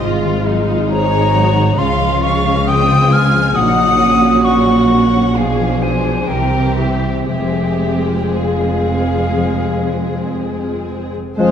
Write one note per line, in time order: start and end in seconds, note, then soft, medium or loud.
0.00 1.75 G#1 medium
0.00 1.81 G#2 medium
0.00 1.75 G#2 medium
0.00 1.75 G#3 soft
0.00 3.60 C4 soft
0.00 0.67 D#4 soft
0.00 0.89 F4 soft
0.00 0.46 F4 medium
0.00 0.89 C5 soft
0.24 1.55 D#3 soft
0.46 1.33 F#3 soft
0.46 0.91 D#4 medium
0.68 1.11 D#4 soft
0.90 1.78 D#4 medium
0.90 1.35 G#4 medium
0.90 3.60 C5 soft
0.90 1.76 C#5 medium
0.90 1.80 A#5 medium
1.13 1.82 D#4 soft
1.34 1.82 F#3 soft
1.34 1.78 F#4 medium
1.56 1.82 D#3 soft
1.78 3.57 C#2 medium
1.78 3.61 C#3 medium
1.78 3.57 C#3 medium
1.78 3.53 G#3 soft
1.78 2.67 C#4 soft
1.78 2.66 F4 soft
1.78 2.23 F5 medium
1.78 2.24 C6 medium
2.00 3.33 F3 soft
2.23 3.11 C#4 soft
2.23 2.67 F5 medium
2.23 2.66 C#6 medium
2.47 2.89 G#4 soft
2.67 3.57 C4 soft
2.67 3.55 F4 medium
2.67 3.61 F4 soft
2.67 3.12 G5 medium
2.67 3.14 D#6 medium
2.90 3.61 G#4 soft
3.12 4.23 C#4 soft
3.12 3.57 G#5 medium
3.12 3.56 F6 medium
3.34 3.60 F3 soft
3.55 5.34 A#1 medium
3.55 5.41 A#2 soft
3.55 5.34 A#2 medium
3.55 5.37 F#3 soft
3.55 4.02 D#4 medium
3.55 5.34 F#4 medium
3.55 4.45 F#5 medium
3.55 4.46 D#6 medium
3.79 5.12 F#3 soft
4.02 4.89 A#3 soft
4.02 4.45 C#4 soft
4.24 4.68 C#4 soft
4.45 5.35 C#4 soft
4.45 5.41 F#4 soft
4.45 5.35 F#5 medium
4.45 5.37 C#6 medium
4.69 5.41 C#4 soft
4.91 5.40 A#3 soft
5.13 5.41 F#3 soft
5.36 6.30 B1 soft
5.36 6.33 B2 soft
5.36 6.30 B2 soft
5.36 6.27 F3 soft
5.36 6.29 D4 soft
5.36 6.30 G#4 soft
5.36 5.83 G#4 soft
5.36 5.84 F5 medium
5.59 6.33 F3 soft
5.82 6.33 G#3 soft
5.82 6.29 C5 soft
5.82 6.29 G#5 medium
6.06 6.34 D4 soft
6.28 7.27 C2 soft
6.28 7.34 C3 soft
6.28 7.27 C3 soft
6.28 7.29 E3 soft
6.28 7.28 C4 soft
6.28 7.29 G4 soft
6.28 6.78 A#4 medium
6.28 6.76 G5 medium
6.54 7.34 G3 soft
6.77 7.34 A#3 soft
6.77 7.27 G4 soft
6.77 7.27 E5 medium
7.04 7.81 C4 soft
7.28 11.17 F1 soft
7.28 11.18 F2 soft
7.28 9.35 F3 soft
7.28 11.17 G#3 soft
7.28 11.13 C4 soft
7.28 8.32 G4 medium
7.28 11.13 G#4 soft
7.28 8.00 E5 medium
7.55 9.10 G#3 soft
7.82 8.85 C4 soft
8.08 8.59 F4 soft
8.34 10.37 G#4 soft
8.34 10.33 F5 medium
8.61 10.12 F4 soft
8.86 9.62 C4 soft
9.12 9.87 G#3 soft
9.36 11.37 F3 soft
9.63 10.87 C4 soft
9.88 11.13 G#3 soft
10.13 10.62 F4 soft
10.38 11.51 G#4 soft
10.63 11.51 F4 soft
10.89 11.51 C4 soft
11.15 11.51 G#3 soft
11.37 11.51 F1 medium
11.37 11.51 F2 medium
11.37 11.51 F3 medium
11.37 11.51 G#3 soft
11.37 11.51 G#3 medium
11.37 11.51 C4 soft
11.37 11.51 F4 soft
11.37 11.51 G#4 medium
11.37 11.51 C5 medium